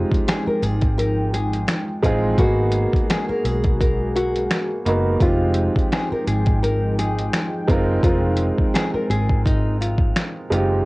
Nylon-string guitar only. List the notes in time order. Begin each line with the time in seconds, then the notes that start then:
Already playing: F4
0.28 G#4
0.47 A#4
0.62 G#4
0.98 A#4
1.34 G#4
2.39 F#4
3.10 G#4
3.29 A#4
3.45 G#4
3.81 A#4
4.16 F#4
5.22 F4
5.92 G#4
6.12 A#4
6.27 G#4
6.63 A#4
6.99 G#4
8.03 F4
8.74 G#4
8.94 A#4
9.10 G#4
9.46 D#4
9.81 F4